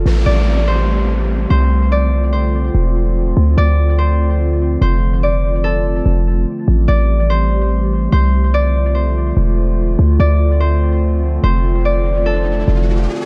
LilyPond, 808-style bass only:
\new Staff \with { instrumentName = "808-style bass" } { \clef bass \time 4/4 \key f \lydian \tempo 4 = 145 a,,8 a,,2. c,8~ | c,2~ c,8 e,,4. | d,8 d,2. f,,8~ | f,,2~ f,,8 f,,4 r8 |
a,,8 a,,2. c,8~ | c,2~ c,8 e,,4. | d,8 d,2. f,,8~ | f,,2~ f,,8 f,,4 r8 | }